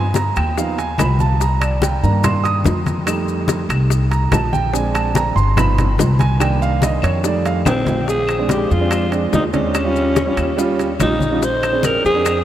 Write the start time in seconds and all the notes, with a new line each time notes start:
Already playing: G2 G#5
0.14 A#5, high bongo, high conga, high timbale, low timbale, maracas
0.36 D#2 G5, high bongo, high conga, high timbale, claves, maracas
0.57 F3 B3 D#4 F5, high bongo, high conga, maracas
0.78 G#5, high bongo, high conga, high timbale, maracas
0.98 C2 B5, high bongo, low bongo, high conga, high timbale, low timbale, claves, maracas
1.19 A5, high bongo, high conga, maracas
1.40 A#5, high bongo, high conga, maracas
1.61 D5, high bongo, high conga, high timbale, claves, maracas
1.82 G5, high bongo, high conga, high timbale, low timbale, maracas
2.03 G2 D#3 A#3 D4 A#5, high conga, maracas
2.24 C6, high bongo, high conga, low conga, high timbale, claves, maracas
2.44 D#6, high bongo, high conga, high timbale, maracas
2.65 F2, high bongo, low bongo, high conga, low timbale, maracas
2.86 high bongo, high conga, high timbale, maracas
3.06 G3 A3 D#4, high bongo, high conga, high timbale, claves, maracas
3.28 high conga, maracas
3.48 high bongo, high conga, high timbale, low timbale, maracas
3.69 C2, high bongo, high conga, high timbale, claves, maracas
3.90 high bongo, high conga, maracas
4.11 A#5, high bongo, high conga, high timbale, maracas
4.31 A#1 A5, high bongo, low bongo, high conga, high timbale, low timbale, claves, maracas
4.53 G5, high bongo, high conga, maracas
4.73 G#3 C4 D4 G#5, high bongo, high conga, maracas
4.94 A5, high bongo, high conga, high timbale, claves, maracas
5.15 A#5, high bongo, high conga, high timbale, low timbale, maracas
5.36 G1 C6, high conga, maracas
5.56 F3 B3 D#4 B5, high bongo, high conga, low conga, high timbale, claves, maracas
5.78 high bongo, high conga, low conga, high timbale, maracas
5.98 C2, high bongo, low bongo, high conga, low timbale, maracas
6.19 G#5, high bongo, high conga, high timbale, maracas
6.40 D#3 A#3 D4 G5, high bongo, high conga, high timbale, claves, maracas
6.61 F5, high conga, maracas
6.82 D#5, high bongo, high conga, high timbale, low timbale, maracas
7.02 F2 C#5, high bongo, high conga, high timbale, claves, maracas
7.24 G3 A3 D#4 D5, high bongo, high conga, maracas
7.45 F5, high bongo, high conga, high timbale, maracas
7.65 A#1 C4, high bongo, low bongo, high conga, high timbale, claves, maracas
7.86 high bongo, high conga, low timbale, maracas
8.08 G#4, high bongo, high conga, maracas
8.27 high bongo, high conga, high timbale, claves, maracas
8.39 G#3 C4 D4
8.49 G4, high bongo, high conga, high timbale, low timbale, maracas
8.70 F2 F4, high conga, maracas
8.80 G#3 C4 D4
8.91 high bongo, high conga, high timbale, claves, maracas
9.11 G#3 C4 D4, high bongo, high conga, high timbale, maracas
9.33 D#2 D#4, high bongo, low bongo, high conga, low timbale, maracas
9.53 G#3 C4 C#4 D4, high bongo, high conga, high timbale, maracas
9.75 high bongo, high conga, high timbale, claves, maracas
9.85 G3 C#4 F4
9.96 high conga, maracas
10.16 high bongo, high conga, high timbale, low timbale, maracas
10.26 G3 C#4 F4
10.37 D#2, high bongo, high conga, high timbale, claves, maracas
10.57 G3 C#4 F4, high bongo, high conga, maracas
10.79 high bongo, high conga, high timbale, maracas
11.00 A#1 G3 C#4 D#4 F4, high bongo, low bongo, high conga, high timbale, low timbale, claves, maracas
11.21 high bongo, high conga, maracas
11.32 G3 C#4 F4
11.43 C5, high bongo, maracas
11.62 high bongo, high conga, high timbale, claves, maracas
11.73 C4 D4 G#4
11.83 A#4, high bongo, high conga, high timbale, low timbale, maracas
12.04 F2 G#4, high conga, maracas
12.14 C4 D4 G#4
12.25 high bongo, high conga, high timbale, claves, maracas